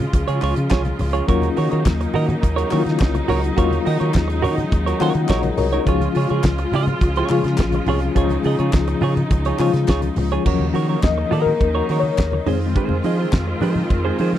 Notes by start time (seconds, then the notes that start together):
Already playing: C#3 F3 G#3 F4
0.00 muted clean electric guitar stroke, closed hi-hat, high conga, low conga
0.13 C#2, muted clean electric guitar stroke, kick, closed hi-hat, muted conga
0.28 C#3 F4 G#4 C#5, closed hi-hat
0.42 C#2 F4 G#4 C#5, clap, open hi-hat
0.56 C#3, muted clean electric guitar stroke, closed hi-hat, high conga
0.70 C2 F4 G#4 C#5, kick, snare, clap, closed hi-hat, muted conga
0.85 muted clean electric guitar stroke, closed hi-hat, high conga
0.99 C#2, muted clean electric guitar stroke, open hi-hat, low conga
1.13 F4 G#4 C#5, closed hi-hat
1.27 D#2 F#3 A#3 C#4 D#4 F4 F#4 A#4 C#5, kick, closed hi-hat, muted conga
1.42 closed hi-hat, high conga
1.57 D#3 F#4 A#4 C#5, open hi-hat
1.71 D#3 F#4 A#4 C#5, closed hi-hat
1.86 D#2, muted clean electric guitar stroke, kick, snare, clap, closed hi-hat, muted conga, high conga
2.01 muted clean electric guitar stroke, closed hi-hat
2.14 D#3 F#4 A#4 D#5, open hi-hat, muted conga, low conga
2.29 muted clean electric guitar stroke, closed hi-hat, high conga, low conga
2.42 D#2, muted clean electric guitar stroke, kick, closed hi-hat, muted conga
2.56 F#4 A#4 C#5, closed hi-hat
2.70 D#3 F#3 A#3 C#4 E4 F#4 A#4 C#5, clap, open hi-hat, muted conga
2.79 F4
2.85 D#3, muted clean electric guitar stroke, snare, closed hi-hat, high conga
2.99 C2, muted clean electric guitar stroke, kick, snare, clap, closed hi-hat, muted conga
3.14 muted clean electric guitar stroke, closed hi-hat, high conga
3.28 C#2 F#4 A#4 C#5, open hi-hat, muted conga, low conga
3.43 muted clean electric guitar stroke, closed hi-hat
3.57 D#2 F#3 G#3 A#3 C#4 F4 F#4 A#4 C#5, kick, closed hi-hat, muted conga
3.71 closed hi-hat, high conga
3.85 D#3 F#4 A#4 D#5, open hi-hat
4.00 D#3 F#4 A#4 C#5, closed hi-hat
4.14 D#2, muted clean electric guitar stroke, kick, snare, clap, closed hi-hat, muted conga, high conga
4.28 muted clean electric guitar stroke, closed hi-hat
4.42 D#3 F#4 A#4 C#5, open hi-hat, muted conga, low conga
4.57 muted clean electric guitar stroke, closed hi-hat, high conga, low conga
4.71 D#2, muted clean electric guitar stroke, kick, closed hi-hat, muted conga
4.86 F#4 A#4 C#5, closed hi-hat
5.00 D#3 F#3 A#3 C#4 F4 F#4 A#4 C#5 F#5, clap, open hi-hat
5.15 D#3, muted clean electric guitar stroke, closed hi-hat, high conga
5.28 A#1 F#4 A#4 C#5 D#5, kick, snare, clap, closed hi-hat, muted conga
5.43 muted clean electric guitar stroke, closed hi-hat, high conga
5.58 C2 F#4 A#4 C#5, muted clean electric guitar stroke, open hi-hat, low conga
5.72 D#4 F#4 A#4 C#5, closed hi-hat
5.85 C#2 C#3 F3 G#3 C#4 F4 G#4 C#5, kick, closed hi-hat, muted conga
6.00 closed hi-hat, high conga
6.15 C#3 F4 G#4 C#5, open hi-hat, muted conga
6.29 C#3 F4 G#4 C#5, closed hi-hat
6.43 C#2, kick, snare, clap, closed hi-hat, muted conga, high conga
6.58 muted clean electric guitar stroke, closed hi-hat
6.72 C#3 F4 G#4 D#5, open hi-hat, muted conga, low conga
6.87 muted clean electric guitar stroke, closed hi-hat, high conga, low conga
7.01 C#2, muted clean electric guitar stroke, kick, closed hi-hat, muted conga
7.16 F4 G#4 C#5, closed hi-hat
7.29 C#3 F3 G#3 C#4 F4 G#4 C#5, clap, open hi-hat, muted conga
7.43 C#3, muted clean electric guitar stroke, snare, closed hi-hat, high conga
7.58 A#1, muted clean electric guitar stroke, kick, snare, clap, closed hi-hat, muted conga
7.72 muted clean electric guitar stroke, closed hi-hat, high conga
7.86 C2 F4 G#4 C#5, open hi-hat, low conga
8.02 muted clean electric guitar stroke, closed hi-hat
8.15 C#2 F3 G#3 C#4 D#4 F4 G#4 C#5, kick, closed hi-hat, muted conga
8.29 closed hi-hat, high conga
8.43 C#3 F4 G#4 D#5, open hi-hat, muted conga
8.59 C#3 F4 G#4 C#5, closed hi-hat
8.73 C#2, muted clean electric guitar stroke, kick, snare, clap, closed hi-hat, muted conga, high conga
8.88 muted clean electric guitar stroke, closed hi-hat
9.01 C#3 F4 G#4 C#5, open hi-hat, muted conga, low conga
9.17 muted clean electric guitar stroke, closed hi-hat, high conga, low conga
9.31 C#2, muted clean electric guitar stroke, kick, closed hi-hat, muted conga
9.45 F4 G#4 C#5, closed hi-hat
9.59 C#3 F3 G#3 C#4 F4 G#4 C#5, clap, open hi-hat, muted conga
9.73 C#3, muted clean electric guitar stroke, snare, closed hi-hat, high conga
9.87 C#2 F4 G#4 C#5, kick, snare, clap, closed hi-hat
10.02 muted clean electric guitar stroke, closed hi-hat, high conga
10.16 C#2, muted clean electric guitar stroke, open hi-hat, muted conga, low conga
10.31 F4 G#4 C#5, closed hi-hat
10.45 D#2 C#3 D#3 F3 F#3 A#3 C#4 D#4 F#4 A#4 C#5, kick, crash, muted conga
10.59 D#2, high conga
10.74 D#3 F#4 A#4 C#5, open hi-hat
10.89 F#4 A#4 C#5
11.03 D#2 D#5, muted clean electric guitar stroke, kick, snare, clap, closed hi-hat, muted conga, high conga
11.18 muted clean electric guitar stroke
11.31 D#3 F#4 A#4 D#5, open hi-hat, low conga
11.42 A#4
11.46 muted clean electric guitar stroke, high conga, low conga
11.60 D#2, muted clean electric guitar stroke, kick, closed hi-hat, muted conga
11.75 F#4 A#4 C#5
11.89 D#3 F#4 A#4 C#5, open hi-hat, muted conga
12.00 C#5, high conga
12.05 muted clean electric guitar stroke
12.17 D#2, muted clean electric guitar stroke, kick, snare, clap, closed hi-hat
12.32 muted clean electric guitar stroke, high conga
12.46 F2 D#3 G#3 C4 D#4 F4 G#4 C5, open hi-hat, muted conga, low conga
12.61 muted clean electric guitar stroke
12.76 D#4 G#4 C5, kick, closed hi-hat
12.89 F2, high conga
13.03 F3 D#4 G#4 D#5, open hi-hat, muted conga
13.19 D#4 G#4 C5
13.33 F2, kick, snare, clap, closed hi-hat, muted conga, high conga
13.48 muted clean electric guitar stroke
13.61 F3 D#4 G#4 C5, open hi-hat, muted conga, low conga
13.76 muted clean electric guitar stroke, high conga, low conga
13.89 F2, muted clean electric guitar stroke, kick, closed hi-hat, muted conga
14.05 D#4 G#4 C5
14.19 F3 D#4 G#4 C5, open hi-hat, muted conga
14.33 muted clean electric guitar stroke, snare, high conga